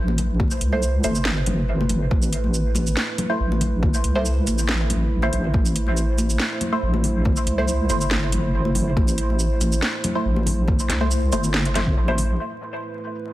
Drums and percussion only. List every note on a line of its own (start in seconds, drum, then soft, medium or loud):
0.08 high conga medium
0.18 closed hi-hat medium
0.18 low conga medium
0.40 kick loud
0.40 high conga medium
0.51 shaker soft
0.61 closed hi-hat medium
0.72 high conga medium
0.83 shaker medium
1.04 closed hi-hat medium
1.04 high conga medium
1.04 shaker medium
1.15 shaker medium
1.25 snare loud
1.46 closed hi-hat medium
1.46 high conga medium
1.46 low conga loud
1.81 high conga loud
1.89 closed hi-hat medium
1.89 low conga medium
2.11 kick loud
2.11 high conga loud
2.22 shaker medium
2.33 closed hi-hat medium
2.44 high conga medium
2.54 shaker medium
2.75 closed hi-hat medium
2.75 high conga medium
2.75 shaker medium
2.87 shaker medium
2.97 snare loud
3.18 closed hi-hat medium
3.18 high conga medium
3.18 low conga loud
3.52 high conga medium
3.61 closed hi-hat medium
3.61 low conga medium
3.83 kick loud
3.83 high conga medium
3.94 shaker medium
4.04 closed hi-hat medium
4.15 high conga medium
4.25 shaker medium
4.47 closed hi-hat medium
4.47 high conga medium
4.47 shaker medium
4.58 shaker medium
4.69 snare loud
4.90 closed hi-hat medium
4.90 high conga medium
4.90 low conga medium
5.22 high conga medium
5.33 closed hi-hat medium
5.33 low conga medium
5.54 kick loud
5.54 high conga medium
5.66 shaker medium
5.76 closed hi-hat medium
5.87 high conga medium
5.97 shaker medium
6.18 closed hi-hat medium
6.18 high conga medium
6.18 shaker medium
6.30 shaker medium
6.40 snare loud
6.61 closed hi-hat medium
6.61 high conga medium
6.61 low conga medium
6.94 high conga medium
7.04 open hi-hat medium
7.04 low conga medium
7.25 kick loud
7.25 high conga medium
7.37 shaker medium
7.47 closed hi-hat medium
7.59 high conga medium
7.68 shaker medium
7.90 closed hi-hat medium
7.90 high conga medium
7.90 shaker soft
8.01 shaker medium
8.11 snare loud
8.32 closed hi-hat medium
8.32 high conga medium
8.32 low conga medium
8.65 high conga medium
8.75 open hi-hat medium
8.75 low conga medium
8.97 kick loud
8.97 high conga medium
9.08 shaker soft
9.18 closed hi-hat medium
9.30 high conga medium
9.39 shaker soft
9.61 closed hi-hat medium
9.61 high conga medium
9.61 shaker soft
9.72 shaker medium
9.82 snare loud
10.04 closed hi-hat medium
10.04 high conga medium
10.04 low conga loud
10.36 high conga medium
10.46 open hi-hat medium
10.46 low conga loud
10.68 kick loud
10.68 high conga medium
10.79 shaker soft
10.90 snare medium
10.90 closed hi-hat medium
11.01 high conga medium
11.11 shaker medium
11.32 closed hi-hat medium
11.32 high conga medium
11.32 shaker soft
11.44 shaker soft
11.54 snare loud
11.65 closed hi-hat soft
11.75 snare medium
11.75 closed hi-hat medium
11.75 high conga medium
11.75 low conga loud
11.87 kick medium
12.08 high conga medium
12.18 open hi-hat medium
12.18 low conga medium
12.51 shaker soft
12.82 shaker soft
13.04 shaker soft
13.15 shaker soft